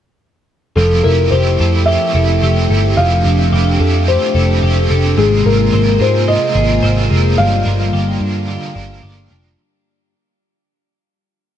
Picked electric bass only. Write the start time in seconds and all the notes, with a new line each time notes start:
0.76 F1
1.05 F1
1.32 F1
1.60 F2
2.14 F1
2.42 F1
2.70 G1
2.98 F1
3.25 F1
3.52 F1
3.80 F2
4.35 F1
4.62 F1
4.90 F1
5.17 G#1
5.45 G#1
5.73 G#1
6.00 G#2
6.55 G#1
6.83 G#1
7.11 F1
7.38 G1
7.66 G1
7.93 G1
8.20 G2
8.76 G1
9.03 G1
9.31 F1